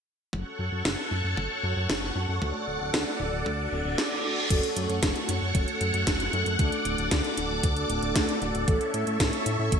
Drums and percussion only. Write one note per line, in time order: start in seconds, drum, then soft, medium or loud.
0.33 kick loud
0.85 kick loud
0.85 snare loud
1.37 kick loud
1.90 kick loud
1.90 snare loud
2.42 kick loud
2.94 kick loud
2.94 snare loud
3.46 kick loud
3.98 snare loud
4.50 kick loud
4.50 closed hi-hat medium
4.50 crash medium
4.63 closed hi-hat soft
4.76 closed hi-hat medium
4.90 closed hi-hat soft
5.03 kick loud
5.03 snare loud
5.03 closed hi-hat medium
5.16 closed hi-hat soft
5.29 closed hi-hat medium
5.55 kick loud
5.55 closed hi-hat medium
5.68 closed hi-hat soft
5.81 closed hi-hat medium
5.94 closed hi-hat soft
6.07 kick loud
6.07 snare loud
6.07 closed hi-hat loud
6.20 closed hi-hat soft
6.33 closed hi-hat soft
6.46 closed hi-hat soft
6.59 kick loud
6.59 closed hi-hat medium
6.72 closed hi-hat soft
6.85 closed hi-hat medium
6.98 closed hi-hat soft
7.11 kick loud
7.11 snare loud
7.11 closed hi-hat medium
7.24 closed hi-hat soft
7.37 closed hi-hat medium
7.63 kick loud
7.63 closed hi-hat medium
7.77 closed hi-hat soft
7.90 closed hi-hat medium
8.03 closed hi-hat soft
8.16 kick loud
8.16 snare loud
8.16 closed hi-hat medium
8.29 closed hi-hat soft
8.42 closed hi-hat soft
8.55 closed hi-hat soft
8.68 kick loud
8.68 closed hi-hat medium
8.81 closed hi-hat soft
8.94 closed hi-hat medium
9.07 closed hi-hat soft
9.20 kick loud
9.20 snare loud
9.20 closed hi-hat medium
9.33 closed hi-hat soft
9.46 closed hi-hat medium
9.72 kick loud
9.72 closed hi-hat medium